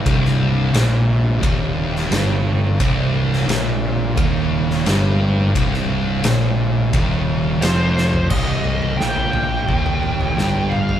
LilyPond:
<<
  \new Staff \with { instrumentName = "Lead electric guitar" } { \time 4/4 \key c \minor \tempo 4 = 87 r1 | r1 | r2. c''4 | ees''4 g''8 g''2 f''8 | }
  \new Staff \with { instrumentName = "String machine" } { \clef bass \time 4/4 \key c \minor <c g d'>1~ | <c g d'>1~ | <c g d'>1 | r1 | }
  \new Staff \with { instrumentName = "Distorted electric guitar" } { \clef bass \time 4/4 \key c \minor c,4 bes,4 ees,4 g,4 | c,4 bes,4 ees,4 g,4 | c,4 bes,4 ees,4 f,4 | c,4 bes,4 ees,4 g,4 | }
  \new Staff \with { instrumentName = "Distorted electric guitar" } { \clef bass \time 4/4 \key c \minor c,4 bes,4 ees,4 g,4 | c,4 bes,4 ees,4 g,4 | c,4 bes,4 ees,4 f,4 | c,4 bes,4 ees,4 g,4 | }
  \new Staff \with { instrumentName = "Picked electric bass" } { \clef bass \time 4/4 \key c \minor c,,4 bes,,4 ees,,4 g,,4 | c,,4 bes,,4 ees,,4 g,,4 | c,,4 bes,,4 ees,,4 f,,4 | c,,4 bes,,4 ees,,4 g,,4 | }
  \new DrumStaff \with { instrumentName = "Drums" } \drummode { \time 4/4 <bd rb>16 sn8. <rb sn>4 <bd rb>8. sn16 <rb sn>4 | <bd rb>8. sn16 <rb sn>4 <bd rb>8. sn16 <rb sn>4 | <bd rb>16 sn8. <rb sn>4 <bd rb>4 <rb sn>8 sn16 tomfh16 | <cymc bd tomfh>8 tomfh16 tomfh16 sn16 tomfh16 <tomfh toml>8 <bd tomfh>16 tomfh16 toml16 tomfh16 sn8 toml16 tomfh16 | }
>>